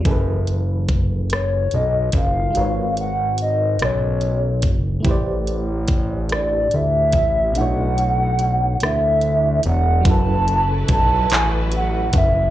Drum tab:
HH |xxxxxx|xxxxxx|xxxxxx|xxxxxx|
CP |------|------|------|------|
SD |---r--|---r--|---r--|---r--|
BD |o-o--o|-----o|o-o--o|------|

HH |xxxxxx|
CP |---x--|
SD |------|
BD |o-o--o|